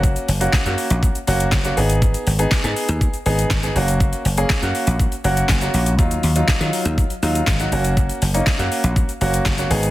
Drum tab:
HH |-xox-xox-xox-xox|-xox-xox-xox-xox|-xox-xox-xox-xox|-xox-xox-xox-xox|
SH |xxxxxxxxxxxxxxxx|xxxxxxxxxxxxxxxx|xxxxxxxxxxxxxxxx|xxxxxxxxxxxxxxxx|
CP |----x-------x---|----x-------x---|----x-------x---|----x-------x---|
SD |----o-------o---|----o-------o---|----o-------o---|----o-------o---|
BD |o---o---o---o---|o---o---o---o---|o---o---o---o---|o---o---o---o---|

HH |-xox-xox-xox-xox|
SH |xxxxxxxxxxxxxxxx|
CP |----x-------x---|
SD |----o-------o---|
BD |o---o---o---o---|